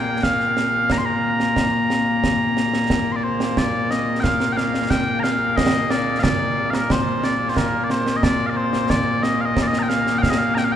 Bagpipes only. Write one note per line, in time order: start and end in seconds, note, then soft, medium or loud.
0.00 10.76 A#2 medium
0.00 10.76 A#3 medium
0.00 0.23 G5 loud
0.23 0.92 F5 loud
0.92 0.98 A#5 loud
0.98 1.05 C6 medium
1.05 3.12 A#5 loud
3.12 3.16 C6 medium
3.16 3.24 D5 medium
3.24 3.58 C5 medium
3.58 3.91 D5 medium
3.91 4.20 D#5 medium
4.20 4.53 F5 medium
4.20 4.24 G5 medium
4.53 4.57 G5 medium
4.57 4.90 F5 medium
4.90 5.20 G5 loud
5.20 5.57 F5 medium
5.20 5.23 A#5 medium
5.57 5.91 D#5 loud
5.91 6.20 D5 medium
6.20 6.70 D5 loud
6.20 6.23 F5 loud
6.70 6.91 A#4 medium
6.70 6.74 F5 medium
6.91 7.24 C5 medium
7.24 7.49 D5 medium
7.49 7.57 C5 medium
7.57 7.84 A#4 medium
7.84 7.91 D5 medium
7.91 8.16 C5 loud
8.16 8.24 D#5 medium
8.24 8.46 D5 loud
8.46 8.57 D5 medium
8.46 8.50 F5 medium
8.57 8.90 C5 medium
8.90 9.23 D5 loud
9.23 9.41 D#5 medium
9.41 9.45 F5 medium
9.45 9.63 D#5 loud
9.63 9.67 D5 medium
9.67 9.79 D#5 loud
9.79 9.89 G5 medium
9.79 9.82 A#5 medium
9.89 10.18 F5 loud
10.18 10.30 F5 loud
10.18 10.22 G5 loud
10.30 10.38 D#5 medium
10.38 10.55 F5 loud
10.55 10.64 G5 loud
10.55 10.58 A#5 loud
10.64 10.72 F5 medium
10.72 10.76 G5 loud